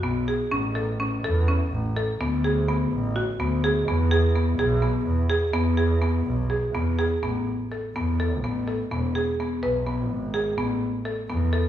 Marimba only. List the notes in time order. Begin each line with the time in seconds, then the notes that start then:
0.03 B3
0.28 G#4
0.51 C#4
0.75 A4
1.00 C#4
1.24 A4
1.48 C#4
1.97 A4
2.21 B3
2.44 G#4
2.68 B3
3.16 F#4
3.40 B3
3.64 G#4
3.88 B3
4.11 G#4
4.36 B3
4.59 G#4
4.82 B3
5.30 G#4
5.53 B3
5.77 G#4
6.02 B3
6.50 G#4
6.75 B3
6.99 G#4
7.23 B3
7.72 A4
7.96 B3
8.20 A4
8.44 B3
8.68 A4
8.92 B3
9.15 G#4
9.40 B3
9.63 B4
9.87 B3
10.34 G#4
10.58 B3
11.05 A4
11.29 B3
11.53 A4